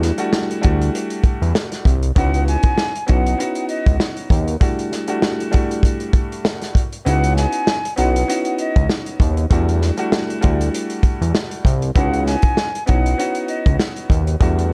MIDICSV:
0, 0, Header, 1, 5, 480
1, 0, Start_track
1, 0, Key_signature, 4, "minor"
1, 0, Tempo, 612245
1, 1695, Time_signature, 4, 2, 24, 8
1, 11548, End_track
2, 0, Start_track
2, 0, Title_t, "Flute"
2, 0, Program_c, 0, 73
2, 1702, Note_on_c, 0, 78, 104
2, 1915, Note_off_c, 0, 78, 0
2, 1938, Note_on_c, 0, 80, 110
2, 2387, Note_off_c, 0, 80, 0
2, 2422, Note_on_c, 0, 78, 86
2, 2870, Note_off_c, 0, 78, 0
2, 2890, Note_on_c, 0, 75, 86
2, 3108, Note_off_c, 0, 75, 0
2, 5539, Note_on_c, 0, 78, 100
2, 5753, Note_off_c, 0, 78, 0
2, 5771, Note_on_c, 0, 80, 104
2, 6224, Note_off_c, 0, 80, 0
2, 6256, Note_on_c, 0, 78, 82
2, 6707, Note_off_c, 0, 78, 0
2, 6740, Note_on_c, 0, 75, 94
2, 6953, Note_off_c, 0, 75, 0
2, 9379, Note_on_c, 0, 78, 101
2, 9593, Note_off_c, 0, 78, 0
2, 9615, Note_on_c, 0, 80, 114
2, 10066, Note_off_c, 0, 80, 0
2, 10100, Note_on_c, 0, 78, 88
2, 10549, Note_off_c, 0, 78, 0
2, 10570, Note_on_c, 0, 75, 85
2, 10788, Note_off_c, 0, 75, 0
2, 11548, End_track
3, 0, Start_track
3, 0, Title_t, "Grand piano"
3, 0, Program_c, 1, 0
3, 0, Note_on_c, 1, 55, 89
3, 0, Note_on_c, 1, 57, 86
3, 0, Note_on_c, 1, 62, 87
3, 0, Note_on_c, 1, 64, 92
3, 0, Note_on_c, 1, 66, 103
3, 112, Note_off_c, 1, 55, 0
3, 114, Note_off_c, 1, 57, 0
3, 116, Note_off_c, 1, 62, 0
3, 118, Note_off_c, 1, 64, 0
3, 120, Note_off_c, 1, 66, 0
3, 137, Note_on_c, 1, 55, 98
3, 142, Note_on_c, 1, 57, 99
3, 146, Note_on_c, 1, 62, 86
3, 150, Note_on_c, 1, 64, 93
3, 154, Note_on_c, 1, 66, 103
3, 464, Note_off_c, 1, 55, 0
3, 466, Note_off_c, 1, 57, 0
3, 468, Note_off_c, 1, 62, 0
3, 470, Note_off_c, 1, 64, 0
3, 472, Note_off_c, 1, 66, 0
3, 481, Note_on_c, 1, 55, 101
3, 485, Note_on_c, 1, 57, 92
3, 489, Note_on_c, 1, 62, 95
3, 493, Note_on_c, 1, 64, 88
3, 498, Note_on_c, 1, 66, 104
3, 1485, Note_off_c, 1, 55, 0
3, 1487, Note_off_c, 1, 57, 0
3, 1489, Note_off_c, 1, 62, 0
3, 1491, Note_off_c, 1, 64, 0
3, 1493, Note_off_c, 1, 66, 0
3, 1689, Note_on_c, 1, 59, 90
3, 1693, Note_on_c, 1, 61, 93
3, 1697, Note_on_c, 1, 63, 87
3, 1701, Note_on_c, 1, 64, 89
3, 1706, Note_on_c, 1, 66, 105
3, 2251, Note_off_c, 1, 59, 0
3, 2253, Note_off_c, 1, 61, 0
3, 2255, Note_off_c, 1, 63, 0
3, 2257, Note_off_c, 1, 64, 0
3, 2260, Note_off_c, 1, 66, 0
3, 2403, Note_on_c, 1, 59, 96
3, 2408, Note_on_c, 1, 61, 89
3, 2411, Note_on_c, 1, 63, 88
3, 2415, Note_on_c, 1, 64, 89
3, 2420, Note_on_c, 1, 66, 100
3, 2632, Note_off_c, 1, 59, 0
3, 2634, Note_off_c, 1, 61, 0
3, 2636, Note_off_c, 1, 63, 0
3, 2638, Note_off_c, 1, 64, 0
3, 2640, Note_off_c, 1, 66, 0
3, 2651, Note_on_c, 1, 59, 97
3, 2655, Note_on_c, 1, 61, 87
3, 2659, Note_on_c, 1, 63, 83
3, 2663, Note_on_c, 1, 64, 86
3, 2668, Note_on_c, 1, 66, 109
3, 3544, Note_off_c, 1, 59, 0
3, 3546, Note_off_c, 1, 61, 0
3, 3548, Note_off_c, 1, 63, 0
3, 3550, Note_off_c, 1, 64, 0
3, 3552, Note_off_c, 1, 66, 0
3, 3607, Note_on_c, 1, 55, 89
3, 3611, Note_on_c, 1, 57, 88
3, 3615, Note_on_c, 1, 62, 88
3, 3619, Note_on_c, 1, 64, 90
3, 3623, Note_on_c, 1, 66, 101
3, 3952, Note_off_c, 1, 55, 0
3, 3953, Note_off_c, 1, 57, 0
3, 3956, Note_off_c, 1, 62, 0
3, 3958, Note_off_c, 1, 64, 0
3, 3960, Note_off_c, 1, 66, 0
3, 3978, Note_on_c, 1, 55, 95
3, 3982, Note_on_c, 1, 57, 93
3, 3986, Note_on_c, 1, 62, 86
3, 3989, Note_on_c, 1, 64, 90
3, 3994, Note_on_c, 1, 66, 102
3, 4304, Note_off_c, 1, 55, 0
3, 4307, Note_off_c, 1, 57, 0
3, 4308, Note_off_c, 1, 62, 0
3, 4310, Note_off_c, 1, 64, 0
3, 4312, Note_off_c, 1, 66, 0
3, 4320, Note_on_c, 1, 55, 99
3, 4324, Note_on_c, 1, 57, 94
3, 4328, Note_on_c, 1, 62, 92
3, 4332, Note_on_c, 1, 64, 90
3, 4336, Note_on_c, 1, 66, 100
3, 5325, Note_off_c, 1, 55, 0
3, 5327, Note_off_c, 1, 57, 0
3, 5329, Note_off_c, 1, 62, 0
3, 5331, Note_off_c, 1, 64, 0
3, 5332, Note_off_c, 1, 66, 0
3, 5527, Note_on_c, 1, 59, 92
3, 5531, Note_on_c, 1, 61, 88
3, 5535, Note_on_c, 1, 63, 91
3, 5539, Note_on_c, 1, 64, 91
3, 5543, Note_on_c, 1, 66, 105
3, 6090, Note_off_c, 1, 59, 0
3, 6092, Note_off_c, 1, 61, 0
3, 6094, Note_off_c, 1, 63, 0
3, 6096, Note_off_c, 1, 64, 0
3, 6098, Note_off_c, 1, 66, 0
3, 6242, Note_on_c, 1, 59, 97
3, 6247, Note_on_c, 1, 61, 84
3, 6250, Note_on_c, 1, 63, 86
3, 6254, Note_on_c, 1, 64, 90
3, 6259, Note_on_c, 1, 66, 98
3, 6471, Note_off_c, 1, 59, 0
3, 6473, Note_off_c, 1, 61, 0
3, 6475, Note_off_c, 1, 63, 0
3, 6477, Note_off_c, 1, 64, 0
3, 6479, Note_off_c, 1, 66, 0
3, 6488, Note_on_c, 1, 59, 94
3, 6493, Note_on_c, 1, 61, 89
3, 6497, Note_on_c, 1, 63, 83
3, 6501, Note_on_c, 1, 64, 86
3, 6504, Note_on_c, 1, 66, 107
3, 7383, Note_off_c, 1, 59, 0
3, 7385, Note_off_c, 1, 61, 0
3, 7387, Note_off_c, 1, 63, 0
3, 7389, Note_off_c, 1, 64, 0
3, 7391, Note_off_c, 1, 66, 0
3, 7447, Note_on_c, 1, 55, 91
3, 7451, Note_on_c, 1, 57, 86
3, 7455, Note_on_c, 1, 62, 85
3, 7459, Note_on_c, 1, 64, 91
3, 7463, Note_on_c, 1, 66, 100
3, 7792, Note_off_c, 1, 55, 0
3, 7793, Note_off_c, 1, 57, 0
3, 7796, Note_off_c, 1, 62, 0
3, 7797, Note_off_c, 1, 64, 0
3, 7800, Note_off_c, 1, 66, 0
3, 7816, Note_on_c, 1, 55, 97
3, 7820, Note_on_c, 1, 57, 96
3, 7824, Note_on_c, 1, 62, 88
3, 7828, Note_on_c, 1, 64, 87
3, 7832, Note_on_c, 1, 66, 108
3, 8143, Note_off_c, 1, 55, 0
3, 8146, Note_off_c, 1, 57, 0
3, 8147, Note_off_c, 1, 62, 0
3, 8149, Note_off_c, 1, 64, 0
3, 8151, Note_off_c, 1, 66, 0
3, 8160, Note_on_c, 1, 55, 101
3, 8163, Note_on_c, 1, 57, 93
3, 8167, Note_on_c, 1, 62, 93
3, 8171, Note_on_c, 1, 64, 91
3, 8175, Note_on_c, 1, 66, 101
3, 9164, Note_off_c, 1, 55, 0
3, 9166, Note_off_c, 1, 57, 0
3, 9168, Note_off_c, 1, 62, 0
3, 9170, Note_off_c, 1, 64, 0
3, 9172, Note_off_c, 1, 66, 0
3, 9368, Note_on_c, 1, 59, 90
3, 9371, Note_on_c, 1, 61, 92
3, 9375, Note_on_c, 1, 63, 89
3, 9379, Note_on_c, 1, 64, 91
3, 9384, Note_on_c, 1, 66, 102
3, 9931, Note_off_c, 1, 59, 0
3, 9932, Note_off_c, 1, 61, 0
3, 9934, Note_off_c, 1, 63, 0
3, 9936, Note_off_c, 1, 64, 0
3, 9939, Note_off_c, 1, 66, 0
3, 10083, Note_on_c, 1, 59, 94
3, 10087, Note_on_c, 1, 61, 87
3, 10091, Note_on_c, 1, 63, 92
3, 10095, Note_on_c, 1, 64, 90
3, 10099, Note_on_c, 1, 66, 98
3, 10312, Note_off_c, 1, 59, 0
3, 10313, Note_off_c, 1, 61, 0
3, 10316, Note_off_c, 1, 63, 0
3, 10317, Note_off_c, 1, 64, 0
3, 10320, Note_off_c, 1, 66, 0
3, 10331, Note_on_c, 1, 59, 96
3, 10335, Note_on_c, 1, 61, 91
3, 10339, Note_on_c, 1, 63, 83
3, 10343, Note_on_c, 1, 64, 87
3, 10347, Note_on_c, 1, 66, 107
3, 11224, Note_off_c, 1, 59, 0
3, 11226, Note_off_c, 1, 61, 0
3, 11228, Note_off_c, 1, 63, 0
3, 11230, Note_off_c, 1, 64, 0
3, 11232, Note_off_c, 1, 66, 0
3, 11288, Note_on_c, 1, 55, 89
3, 11292, Note_on_c, 1, 57, 87
3, 11296, Note_on_c, 1, 62, 89
3, 11300, Note_on_c, 1, 64, 91
3, 11304, Note_on_c, 1, 66, 100
3, 11548, Note_off_c, 1, 55, 0
3, 11548, Note_off_c, 1, 57, 0
3, 11548, Note_off_c, 1, 62, 0
3, 11548, Note_off_c, 1, 64, 0
3, 11548, Note_off_c, 1, 66, 0
3, 11548, End_track
4, 0, Start_track
4, 0, Title_t, "Analog synth bass"
4, 0, Program_c, 2, 38
4, 0, Note_on_c, 2, 40, 107
4, 93, Note_off_c, 2, 40, 0
4, 508, Note_on_c, 2, 38, 96
4, 707, Note_off_c, 2, 38, 0
4, 1111, Note_on_c, 2, 40, 97
4, 1201, Note_off_c, 2, 40, 0
4, 1455, Note_on_c, 2, 36, 97
4, 1659, Note_off_c, 2, 36, 0
4, 1697, Note_on_c, 2, 37, 118
4, 2013, Note_off_c, 2, 37, 0
4, 2429, Note_on_c, 2, 35, 100
4, 2627, Note_off_c, 2, 35, 0
4, 3032, Note_on_c, 2, 37, 86
4, 3121, Note_off_c, 2, 37, 0
4, 3374, Note_on_c, 2, 39, 96
4, 3579, Note_off_c, 2, 39, 0
4, 5537, Note_on_c, 2, 37, 113
4, 5853, Note_off_c, 2, 37, 0
4, 6257, Note_on_c, 2, 35, 94
4, 6460, Note_off_c, 2, 35, 0
4, 6870, Note_on_c, 2, 37, 92
4, 6960, Note_off_c, 2, 37, 0
4, 7213, Note_on_c, 2, 39, 91
4, 7418, Note_off_c, 2, 39, 0
4, 7455, Note_on_c, 2, 40, 108
4, 7772, Note_off_c, 2, 40, 0
4, 8187, Note_on_c, 2, 38, 97
4, 8386, Note_off_c, 2, 38, 0
4, 8791, Note_on_c, 2, 40, 94
4, 8881, Note_off_c, 2, 40, 0
4, 9134, Note_on_c, 2, 36, 95
4, 9338, Note_off_c, 2, 36, 0
4, 9376, Note_on_c, 2, 37, 115
4, 9692, Note_off_c, 2, 37, 0
4, 10108, Note_on_c, 2, 35, 99
4, 10306, Note_off_c, 2, 35, 0
4, 10711, Note_on_c, 2, 37, 92
4, 10801, Note_off_c, 2, 37, 0
4, 11055, Note_on_c, 2, 39, 93
4, 11259, Note_off_c, 2, 39, 0
4, 11296, Note_on_c, 2, 40, 110
4, 11548, Note_off_c, 2, 40, 0
4, 11548, End_track
5, 0, Start_track
5, 0, Title_t, "Drums"
5, 18, Note_on_c, 9, 38, 38
5, 24, Note_on_c, 9, 42, 77
5, 96, Note_off_c, 9, 38, 0
5, 102, Note_off_c, 9, 42, 0
5, 139, Note_on_c, 9, 42, 57
5, 217, Note_off_c, 9, 42, 0
5, 256, Note_on_c, 9, 38, 113
5, 335, Note_off_c, 9, 38, 0
5, 396, Note_on_c, 9, 42, 56
5, 474, Note_off_c, 9, 42, 0
5, 493, Note_on_c, 9, 42, 81
5, 506, Note_on_c, 9, 36, 93
5, 571, Note_off_c, 9, 42, 0
5, 585, Note_off_c, 9, 36, 0
5, 637, Note_on_c, 9, 42, 60
5, 716, Note_off_c, 9, 42, 0
5, 743, Note_on_c, 9, 42, 94
5, 822, Note_off_c, 9, 42, 0
5, 864, Note_on_c, 9, 42, 53
5, 942, Note_off_c, 9, 42, 0
5, 968, Note_on_c, 9, 42, 57
5, 969, Note_on_c, 9, 36, 94
5, 1047, Note_off_c, 9, 36, 0
5, 1047, Note_off_c, 9, 42, 0
5, 1116, Note_on_c, 9, 42, 50
5, 1194, Note_off_c, 9, 42, 0
5, 1216, Note_on_c, 9, 38, 123
5, 1294, Note_off_c, 9, 38, 0
5, 1345, Note_on_c, 9, 42, 56
5, 1352, Note_on_c, 9, 38, 32
5, 1424, Note_off_c, 9, 42, 0
5, 1430, Note_off_c, 9, 38, 0
5, 1453, Note_on_c, 9, 36, 97
5, 1466, Note_on_c, 9, 42, 89
5, 1531, Note_off_c, 9, 36, 0
5, 1544, Note_off_c, 9, 42, 0
5, 1588, Note_on_c, 9, 42, 55
5, 1666, Note_off_c, 9, 42, 0
5, 1695, Note_on_c, 9, 36, 121
5, 1698, Note_on_c, 9, 42, 94
5, 1773, Note_off_c, 9, 36, 0
5, 1776, Note_off_c, 9, 42, 0
5, 1834, Note_on_c, 9, 42, 62
5, 1912, Note_off_c, 9, 42, 0
5, 1944, Note_on_c, 9, 42, 79
5, 2022, Note_off_c, 9, 42, 0
5, 2059, Note_on_c, 9, 42, 58
5, 2067, Note_on_c, 9, 36, 97
5, 2137, Note_off_c, 9, 42, 0
5, 2145, Note_off_c, 9, 36, 0
5, 2177, Note_on_c, 9, 38, 112
5, 2255, Note_off_c, 9, 38, 0
5, 2315, Note_on_c, 9, 42, 55
5, 2394, Note_off_c, 9, 42, 0
5, 2412, Note_on_c, 9, 42, 81
5, 2426, Note_on_c, 9, 36, 94
5, 2491, Note_off_c, 9, 42, 0
5, 2505, Note_off_c, 9, 36, 0
5, 2558, Note_on_c, 9, 42, 63
5, 2636, Note_off_c, 9, 42, 0
5, 2665, Note_on_c, 9, 42, 93
5, 2743, Note_off_c, 9, 42, 0
5, 2784, Note_on_c, 9, 42, 55
5, 2862, Note_off_c, 9, 42, 0
5, 2890, Note_on_c, 9, 42, 58
5, 2968, Note_off_c, 9, 42, 0
5, 3030, Note_on_c, 9, 36, 92
5, 3036, Note_on_c, 9, 42, 50
5, 3108, Note_off_c, 9, 36, 0
5, 3114, Note_off_c, 9, 42, 0
5, 3136, Note_on_c, 9, 38, 123
5, 3214, Note_off_c, 9, 38, 0
5, 3265, Note_on_c, 9, 42, 55
5, 3343, Note_off_c, 9, 42, 0
5, 3373, Note_on_c, 9, 36, 93
5, 3385, Note_on_c, 9, 42, 88
5, 3451, Note_off_c, 9, 36, 0
5, 3464, Note_off_c, 9, 42, 0
5, 3508, Note_on_c, 9, 42, 52
5, 3586, Note_off_c, 9, 42, 0
5, 3614, Note_on_c, 9, 36, 120
5, 3618, Note_on_c, 9, 42, 90
5, 3693, Note_off_c, 9, 36, 0
5, 3696, Note_off_c, 9, 42, 0
5, 3753, Note_on_c, 9, 42, 59
5, 3832, Note_off_c, 9, 42, 0
5, 3856, Note_on_c, 9, 38, 40
5, 3863, Note_on_c, 9, 42, 77
5, 3935, Note_off_c, 9, 38, 0
5, 3941, Note_off_c, 9, 42, 0
5, 3978, Note_on_c, 9, 42, 58
5, 4056, Note_off_c, 9, 42, 0
5, 4095, Note_on_c, 9, 38, 113
5, 4173, Note_off_c, 9, 38, 0
5, 4234, Note_on_c, 9, 42, 54
5, 4313, Note_off_c, 9, 42, 0
5, 4331, Note_on_c, 9, 42, 81
5, 4345, Note_on_c, 9, 36, 92
5, 4409, Note_off_c, 9, 42, 0
5, 4424, Note_off_c, 9, 36, 0
5, 4476, Note_on_c, 9, 42, 60
5, 4554, Note_off_c, 9, 42, 0
5, 4571, Note_on_c, 9, 36, 101
5, 4583, Note_on_c, 9, 42, 95
5, 4649, Note_off_c, 9, 36, 0
5, 4661, Note_off_c, 9, 42, 0
5, 4703, Note_on_c, 9, 42, 52
5, 4782, Note_off_c, 9, 42, 0
5, 4808, Note_on_c, 9, 36, 93
5, 4809, Note_on_c, 9, 42, 56
5, 4887, Note_off_c, 9, 36, 0
5, 4887, Note_off_c, 9, 42, 0
5, 4955, Note_on_c, 9, 42, 49
5, 5034, Note_off_c, 9, 42, 0
5, 5055, Note_on_c, 9, 38, 122
5, 5134, Note_off_c, 9, 38, 0
5, 5185, Note_on_c, 9, 42, 52
5, 5191, Note_on_c, 9, 38, 32
5, 5263, Note_off_c, 9, 42, 0
5, 5270, Note_off_c, 9, 38, 0
5, 5292, Note_on_c, 9, 36, 95
5, 5305, Note_on_c, 9, 42, 87
5, 5370, Note_off_c, 9, 36, 0
5, 5383, Note_off_c, 9, 42, 0
5, 5428, Note_on_c, 9, 42, 53
5, 5506, Note_off_c, 9, 42, 0
5, 5536, Note_on_c, 9, 42, 90
5, 5615, Note_off_c, 9, 42, 0
5, 5672, Note_on_c, 9, 42, 62
5, 5750, Note_off_c, 9, 42, 0
5, 5776, Note_on_c, 9, 38, 39
5, 5782, Note_on_c, 9, 42, 76
5, 5854, Note_off_c, 9, 38, 0
5, 5860, Note_off_c, 9, 42, 0
5, 5898, Note_on_c, 9, 42, 58
5, 5976, Note_off_c, 9, 42, 0
5, 6015, Note_on_c, 9, 38, 115
5, 6093, Note_off_c, 9, 38, 0
5, 6154, Note_on_c, 9, 42, 57
5, 6233, Note_off_c, 9, 42, 0
5, 6251, Note_on_c, 9, 42, 82
5, 6329, Note_off_c, 9, 42, 0
5, 6396, Note_on_c, 9, 42, 62
5, 6474, Note_off_c, 9, 42, 0
5, 6502, Note_on_c, 9, 42, 93
5, 6581, Note_off_c, 9, 42, 0
5, 6622, Note_on_c, 9, 42, 52
5, 6701, Note_off_c, 9, 42, 0
5, 6729, Note_on_c, 9, 42, 58
5, 6807, Note_off_c, 9, 42, 0
5, 6868, Note_on_c, 9, 36, 93
5, 6874, Note_on_c, 9, 42, 49
5, 6947, Note_off_c, 9, 36, 0
5, 6953, Note_off_c, 9, 42, 0
5, 6974, Note_on_c, 9, 38, 122
5, 7052, Note_off_c, 9, 38, 0
5, 7104, Note_on_c, 9, 42, 55
5, 7182, Note_off_c, 9, 42, 0
5, 7211, Note_on_c, 9, 36, 95
5, 7224, Note_on_c, 9, 42, 87
5, 7290, Note_off_c, 9, 36, 0
5, 7302, Note_off_c, 9, 42, 0
5, 7346, Note_on_c, 9, 42, 52
5, 7425, Note_off_c, 9, 42, 0
5, 7453, Note_on_c, 9, 36, 121
5, 7457, Note_on_c, 9, 42, 89
5, 7532, Note_off_c, 9, 36, 0
5, 7535, Note_off_c, 9, 42, 0
5, 7593, Note_on_c, 9, 42, 62
5, 7672, Note_off_c, 9, 42, 0
5, 7696, Note_on_c, 9, 38, 39
5, 7703, Note_on_c, 9, 42, 78
5, 7775, Note_off_c, 9, 38, 0
5, 7781, Note_off_c, 9, 42, 0
5, 7818, Note_on_c, 9, 42, 59
5, 7897, Note_off_c, 9, 42, 0
5, 7936, Note_on_c, 9, 38, 113
5, 8014, Note_off_c, 9, 38, 0
5, 8075, Note_on_c, 9, 42, 54
5, 8153, Note_off_c, 9, 42, 0
5, 8171, Note_on_c, 9, 42, 82
5, 8185, Note_on_c, 9, 36, 93
5, 8250, Note_off_c, 9, 42, 0
5, 8264, Note_off_c, 9, 36, 0
5, 8316, Note_on_c, 9, 42, 62
5, 8394, Note_off_c, 9, 42, 0
5, 8422, Note_on_c, 9, 42, 94
5, 8500, Note_off_c, 9, 42, 0
5, 8542, Note_on_c, 9, 42, 55
5, 8621, Note_off_c, 9, 42, 0
5, 8648, Note_on_c, 9, 36, 90
5, 8649, Note_on_c, 9, 42, 58
5, 8727, Note_off_c, 9, 36, 0
5, 8727, Note_off_c, 9, 42, 0
5, 8796, Note_on_c, 9, 42, 52
5, 8874, Note_off_c, 9, 42, 0
5, 8895, Note_on_c, 9, 38, 120
5, 8974, Note_off_c, 9, 38, 0
5, 9024, Note_on_c, 9, 42, 57
5, 9103, Note_off_c, 9, 42, 0
5, 9132, Note_on_c, 9, 36, 94
5, 9144, Note_on_c, 9, 42, 87
5, 9210, Note_off_c, 9, 36, 0
5, 9223, Note_off_c, 9, 42, 0
5, 9267, Note_on_c, 9, 42, 54
5, 9345, Note_off_c, 9, 42, 0
5, 9374, Note_on_c, 9, 36, 119
5, 9377, Note_on_c, 9, 42, 91
5, 9452, Note_off_c, 9, 36, 0
5, 9455, Note_off_c, 9, 42, 0
5, 9513, Note_on_c, 9, 42, 58
5, 9591, Note_off_c, 9, 42, 0
5, 9616, Note_on_c, 9, 38, 40
5, 9623, Note_on_c, 9, 42, 75
5, 9695, Note_off_c, 9, 38, 0
5, 9701, Note_off_c, 9, 42, 0
5, 9738, Note_on_c, 9, 42, 59
5, 9746, Note_on_c, 9, 36, 99
5, 9816, Note_off_c, 9, 42, 0
5, 9824, Note_off_c, 9, 36, 0
5, 9856, Note_on_c, 9, 38, 117
5, 9934, Note_off_c, 9, 38, 0
5, 9995, Note_on_c, 9, 42, 55
5, 10074, Note_off_c, 9, 42, 0
5, 10091, Note_on_c, 9, 42, 85
5, 10106, Note_on_c, 9, 36, 91
5, 10170, Note_off_c, 9, 42, 0
5, 10184, Note_off_c, 9, 36, 0
5, 10237, Note_on_c, 9, 42, 60
5, 10316, Note_off_c, 9, 42, 0
5, 10343, Note_on_c, 9, 42, 92
5, 10422, Note_off_c, 9, 42, 0
5, 10464, Note_on_c, 9, 42, 53
5, 10542, Note_off_c, 9, 42, 0
5, 10569, Note_on_c, 9, 42, 58
5, 10648, Note_off_c, 9, 42, 0
5, 10709, Note_on_c, 9, 36, 92
5, 10715, Note_on_c, 9, 42, 52
5, 10788, Note_off_c, 9, 36, 0
5, 10793, Note_off_c, 9, 42, 0
5, 10815, Note_on_c, 9, 38, 124
5, 10894, Note_off_c, 9, 38, 0
5, 10946, Note_on_c, 9, 42, 53
5, 11024, Note_off_c, 9, 42, 0
5, 11053, Note_on_c, 9, 36, 97
5, 11066, Note_on_c, 9, 42, 85
5, 11131, Note_off_c, 9, 36, 0
5, 11144, Note_off_c, 9, 42, 0
5, 11188, Note_on_c, 9, 42, 54
5, 11267, Note_off_c, 9, 42, 0
5, 11295, Note_on_c, 9, 36, 116
5, 11298, Note_on_c, 9, 42, 91
5, 11373, Note_off_c, 9, 36, 0
5, 11376, Note_off_c, 9, 42, 0
5, 11434, Note_on_c, 9, 42, 61
5, 11513, Note_off_c, 9, 42, 0
5, 11548, End_track
0, 0, End_of_file